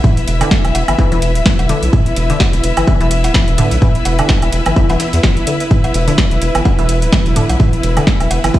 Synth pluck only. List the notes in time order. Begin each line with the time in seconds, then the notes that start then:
0.04 E3
0.41 D3
0.88 E3
0.99 E3
1.12 E3
1.46 E3
1.69 D3
1.93 E3
2.30 D3
2.77 E3
2.87 E3
3.01 E3
3.35 E3
3.58 D3
3.82 E3
4.19 D3
4.66 E3
4.76 E3
4.90 E3
5.24 E3
5.47 D3
5.71 E3
6.08 D3
6.55 E3
6.65 E4
6.79 E3
7.13 E3
7.36 D3
7.60 E3
7.97 D3
8.44 E3
8.55 E4